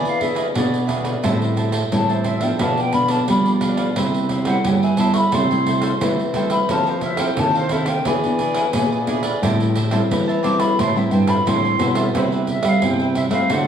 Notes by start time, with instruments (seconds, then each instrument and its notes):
Already playing: nylon-string guitar E3 B3 D4 G#4, cavaquinho E4 G#4 B4 D5
0.05 flute F5, pandeiro
0.19 nylon-string guitar B3 D4 G#4, cavaquinho E4 G#4 B4 D5, flute E5, pandeiro
0.35 cavaquinho E4 G#4 B4 D5, flute D#5, pandeiro
0.54 nylon-string guitar B2 B3 D4 G#4, cavaquinho E4 G#4 B4 D5, flute D5, pandeiro
0.74 pandeiro
0.87 cavaquinho E4 G#4 B4 D5, pandeiro
1.03 cavaquinho G#4 B4 D5, pandeiro
1.23 nylon-string guitar A2 G3 C4 E4, cavaquinho G4 C5 E5 A5, pandeiro
1.42 pandeiro
1.56 cavaquinho G4 C5 E5 A5, pandeiro
1.72 cavaquinho G4 C5 E5 A5, pandeiro
1.92 nylon-string guitar A2 E3 G3 C4 E4, flute A5, pandeiro
2.09 cavaquinho C5 E5 A5, flute C5, pandeiro
2.24 cavaquinho G4 C5 E5 A5, flute E5, pandeiro
2.41 nylon-string guitar F3 B3 D4, cavaquinho C5 E5 A5, flute G5, pandeiro
2.59 nylon-string guitar B2, cavaquinho D4 B4 D5 F5, flute A5, pandeiro
2.77 flute G5, pandeiro
2.92 nylon-string guitar F3 B3 D4, cavaquinho D4 B4 D5 F5, flute B5, pandeiro
3.08 cavaquinho D4 B4 D5 F5, flute A5, pandeiro
3.28 nylon-string guitar B2 F3 G3 B3 D4, cavaquinho D4 B4 D5 F5, flute B5, pandeiro
3.46 pandeiro
3.61 cavaquinho D4 B4 D5 F5, pandeiro
3.77 cavaquinho B4 D5 F5, pandeiro
3.96 nylon-string guitar C3 G3 E4, cavaquinho G4 B4 C5 E5, pandeiro
4.14 pandeiro
4.29 cavaquinho G4 B4 C5 E5, pandeiro
4.45 nylon-string guitar G3 B3 E4, cavaquinho G4 B4 C5 E5, flute F#5, pandeiro
4.64 nylon-string guitar G2 G3, flute G5, pandeiro
4.83 cavaquinho B4 C5 E5, flute G#5, pandeiro
4.97 nylon-string guitar G3 B3 E4, cavaquinho G4 B4 C5 E5, flute A5, pandeiro
5.13 cavaquinho B4 C5 E5, flute B5 C#6, pandeiro
5.32 nylon-string guitar C3 G3 A3 E4, cavaquinho A4 C5 E5 G5, flute C6, pandeiro
5.50 nylon-string guitar G3 A3 E4, pandeiro
5.66 cavaquinho A4 C5 E5 G5, pandeiro
5.82 cavaquinho A4 C5 E5 G5, pandeiro
6.01 nylon-string guitar C3 E3 G3 A3 E4, cavaquinho A4 C5 E5 G5, pandeiro
6.19 pandeiro
6.34 nylon-string guitar G3 A3 E4, cavaquinho A4 C5 E5 G5, pandeiro
6.50 cavaquinho C5 E5 G5, flute B5, pandeiro
6.69 nylon-string guitar F3 C4 A4, cavaquinho A4 C5 F5, flute A5, pandeiro
6.86 flute C5, pandeiro
7.01 cavaquinho E4 A4 C5 F5, flute E5, pandeiro
7.17 nylon-string guitar C4 E4 A4, cavaquinho E4 A4 C5 F5, flute G5, pandeiro
7.37 nylon-string guitar C3 D#3, flute A5, pandeiro
7.55 cavaquinho A4 C5 F5, flute C5, pandeiro
7.69 nylon-string guitar C4 A4, cavaquinho E4 A4 C5 F5, flute E5, pandeiro
7.86 cavaquinho A4 C5 F5, flute G5, pandeiro
8.05 nylon-string guitar E3 B3 D4 G#4, cavaquinho E4 G#4 B4 D5, flute G#5, pandeiro
8.24 nylon-string guitar B3 D4 G#4, pandeiro
8.39 cavaquinho E4 G#4 B4 D5, pandeiro
8.54 cavaquinho E4 G#4 B4 D5, pandeiro
8.73 nylon-string guitar A#2 B3 D4 G#4, cavaquinho E4 G#4 B4 D5, pandeiro
8.92 pandeiro
9.07 nylon-string guitar B3 D4 G#4, cavaquinho E4 G#4 B4 D5, pandeiro
9.23 cavaquinho G#4 B4 D5, pandeiro
9.43 nylon-string guitar A2 G3 C4 E4, cavaquinho G4 C5 E5 A5, pandeiro
9.60 pandeiro
9.75 cavaquinho G4 C5 E5 A5, pandeiro
9.91 nylon-string guitar G3 C4 E4, cavaquinho G4 C5 E5 A5, pandeiro
10.11 nylon-string guitar E3, pandeiro
10.28 cavaquinho C5 E5 A5, pandeiro
10.43 nylon-string guitar G3 C4 E4, cavaquinho G4 C5 E5 A5, flute D6, pandeiro
10.59 cavaquinho C5 E5 A5, flute B5, pandeiro
10.78 nylon-string guitar A2, cavaquinho G4 C5 E5 A5, flute C6, pandeiro
10.96 nylon-string guitar G3 C4 E4, flute E5, pandeiro
11.11 nylon-string guitar G2, cavaquinho G4 C5 E5 A5, flute G5, pandeiro
11.27 cavaquinho G4 C5 E5 A5, flute B5, pandeiro
11.46 nylon-string guitar A2 E3 G3 C4 E4, cavaquinho G4 C5 E5 A5, flute C6, pandeiro
11.65 pandeiro
11.79 nylon-string guitar B2 G3 C4 E4, cavaquinho G4 C5 E5 A5, pandeiro
11.95 cavaquinho C5 E5 A5, pandeiro
12.14 nylon-string guitar C3 G3 E4, cavaquinho E4 B4 C5 E5, flute C5, pandeiro
12.32 cavaquinho B4 C5 E5, pandeiro
12.47 flute E5, muted cavaquinho stroke, pandeiro
12.63 nylon-string guitar G3, cavaquinho B4 C5 E5, flute G5, pandeiro
12.68 flute F5
12.82 nylon-string guitar G2 C3 G3 B3 E4, flute G5, pandeiro
12.99 cavaquinho B4 C5 E5, pandeiro
13.15 cavaquinho E4 B4 C5 E5, flute E5, pandeiro
13.30 nylon-string guitar A3 C4 F#4, cavaquinho B4 C5 E5, flute F5, pandeiro
13.50 nylon-string guitar D3, cavaquinho F#4 A4 C5 D5, flute F#5, pandeiro